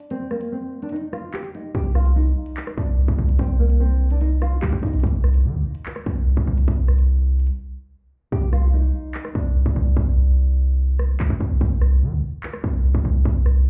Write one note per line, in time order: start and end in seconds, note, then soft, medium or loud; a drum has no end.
0.10 0.26 C4 medium
0.10 closed hi-hat medium
0.31 0.47 A#3 medium
0.31 cross-stick medium
0.41 closed hi-hat medium
0.52 0.81 C4 medium
0.82 0.90 D4 medium
0.82 closed hi-hat soft
0.89 1.08 D#4 medium
0.89 closed hi-hat medium
0.96 closed hi-hat medium
1.13 1.29 F4 medium
1.13 cross-stick medium
1.13 closed hi-hat medium
1.33 1.49 G4 medium
1.33 clap loud
1.33 closed hi-hat medium
1.44 closed hi-hat medium
1.55 1.70 D#4 medium
1.55 closed hi-hat medium
1.75 2.34 C2 loud
1.75 1.90 G4 loud
1.75 kick loud
1.75 closed hi-hat medium
1.95 2.11 F4 medium
1.95 cross-stick medium
2.05 closed hi-hat medium
2.16 2.74 D#4 medium
2.46 closed hi-hat medium
2.57 clap loud
2.57 closed hi-hat medium
2.67 cross-stick loud
2.77 3.07 C2 loud
2.77 3.35 D4 medium
2.77 kick loud
2.77 closed hi-hat medium
3.08 3.18 C2 loud
3.08 kick loud
3.18 3.38 C2 loud
3.29 closed hi-hat medium
3.39 4.58 C2 loud
3.39 3.55 C4 medium
3.39 kick loud
3.39 closed hi-hat medium
3.59 3.75 A#3 medium
3.70 closed hi-hat medium
3.80 4.09 C4 medium
4.10 4.19 D4 medium
4.10 closed hi-hat medium
4.21 4.37 D#4 medium
4.21 closed hi-hat medium
4.42 4.58 F4 medium
4.42 cross-stick medium
4.42 closed hi-hat medium
4.62 4.72 C2 loud
4.62 4.78 G4 medium
4.62 clap loud
4.62 closed hi-hat medium
4.73 4.82 C2 loud
4.73 kick loud
4.73 closed hi-hat soft
4.79 5.03 C2 loud
4.79 4.99 D#4 medium
4.79 kick medium
4.79 closed hi-hat medium
4.86 closed hi-hat medium
4.93 closed hi-hat medium
5.00 5.46 C2 loud
5.00 kick loud
5.00 closed hi-hat medium
5.07 closed hi-hat medium
5.24 cross-stick medium
5.34 closed hi-hat medium
5.45 5.56 D#3 loud
5.55 5.65 C2 loud
5.75 closed hi-hat medium
5.85 clap loud
5.85 closed hi-hat medium
5.96 cross-stick medium
6.06 6.36 C2 loud
6.06 kick loud
6.06 closed hi-hat medium
6.37 6.47 C2 loud
6.37 kick loud
6.47 6.67 C2 loud
6.58 closed hi-hat medium
6.68 7.50 C2 loud
6.68 kick loud
6.68 closed hi-hat medium
6.88 cross-stick medium
6.98 closed hi-hat medium
7.40 closed hi-hat soft
7.47 closed hi-hat medium
8.32 8.91 C2 loud
8.32 8.48 G4 loud
8.32 kick loud
8.52 8.68 F4 medium
8.52 cross-stick medium
8.74 9.31 D#4 medium
9.14 clap loud
9.25 cross-stick loud
9.35 9.65 C2 loud
9.35 9.93 D4 medium
9.35 kick loud
9.66 9.75 C2 loud
9.66 kick loud
9.76 9.96 C2 loud
9.97 11.16 C2 loud
9.97 kick loud
10.99 cross-stick medium
11.20 11.30 C2 loud
11.20 clap loud
11.30 11.40 C2 loud
11.30 kick loud
11.40 11.60 C2 loud
11.40 kick medium
11.61 12.04 C2 loud
11.61 kick loud
11.82 cross-stick medium
12.02 12.14 D#3 loud
12.12 12.22 C2 loud
12.43 clap loud
12.53 cross-stick loud
12.64 12.93 C2 loud
12.64 kick loud
12.95 13.04 C2 loud
12.95 kick loud
13.05 13.25 C2 loud
13.25 13.70 C2 loud
13.25 kick loud
13.46 cross-stick medium